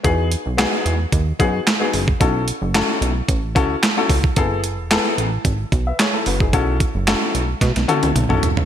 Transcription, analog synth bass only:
\new Staff \with { instrumentName = "Analog synth bass" } { \clef bass \time 4/4 \key e \major \tempo 4 = 111 e,8. b,,8 r16 e,8 dis,8 fis,8 r8 fis,,8 | b,,8. fis,,8 r16 b,,8 a,,8 cis,8 r8 cis,8 | fis,,8. e,,8 r16 a,,8 gis,,8 b,,8 r8 fis,,8 | b,,8. fis,,8 r16 b,,8 b,16 b,,16 r16 cis,16 b,,16 b,,16 r16 cis,16 | }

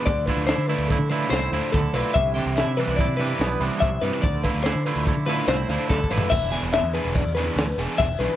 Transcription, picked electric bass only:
\new Staff \with { instrumentName = "Picked electric bass" } { \clef bass \time 5/4 \key d \dorian \tempo 4 = 144 d,8. d,8 d8 d,8 d8. c,8 d,16 r16 d,8 b,,16 r16 | c,8. c,8 c8 c,8 c8. b,,8 c,16 r16 c,8 g,16 r16 | d,8. d,8 d8 d,8 d8. c,8 d,16 r16 d,8 a,,16 r16 | e,,8. e,,8 e,8 e,,8 e,8. d,8 e,,16 r16 e,,8 b,,16 r16 | }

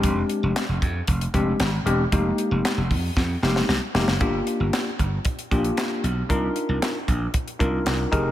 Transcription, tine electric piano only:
\new Staff \with { instrumentName = "Tine electric piano" } { \time 4/4 \key f \dorian \tempo 4 = 115 <aes c' d' g'>4 r4. <aes c' d' g'>8 r8 <aes c' d' g'>8 | <aes bes ees' g'>4. r4 <aes bes ees' g'>8 r8 <aes bes ees' g'>8 | <bes d' f' g'>4. r4 <bes d' f' g'>4 r8 | <d' ees' f' bes'>4. r4 <d' ees' f' bes'>4 <ees' g' aes' bes'>8 | }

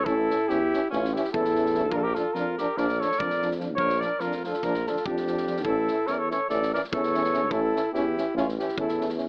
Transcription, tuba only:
\new Staff \with { instrumentName = "Tuba" } { \clef bass \time 9/8 \tempo 4. = 97 a,,4 e,4 a,,4 e,4. | bes,,4 f,4 bes,,4 f,4. | bes,,4 f,4 bes,,4 f,4. | a,,4 e,4 a,,4 e,4. |
a,,4 e,4 a,,4 e,4. | }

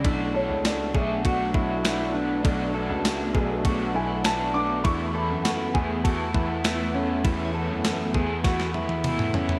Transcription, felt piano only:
\new Staff \with { instrumentName = "Felt piano" } { \time 4/4 \key b \dorian \tempo 4 = 100 d''8 cis''8 d''8 e''8 fis''4. r8 | r2 r8 gis''8 a''8 d'''8 | cis'''8 b''8 fis''8 gis''8 a''4. r8 | r1 | }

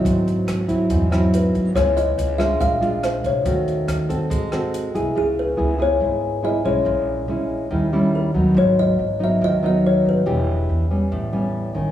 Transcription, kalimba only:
\new Staff \with { instrumentName = "Kalimba" } { \time 4/4 \key cis \minor \tempo 4 = 141 bis'4. r4. b'4 | cis''8 dis''4 e''8 eis''4 bis'8 cis''8~ | cis''8 r2. r8 | gis'8 b'4 cis''4. dis''8 cis''8~ |
cis''4. r4. ais'4 | cis''8 dis''4 e''8 dis''8 dis''8 cis''8 b'8~ | b'8 r2. r8 | }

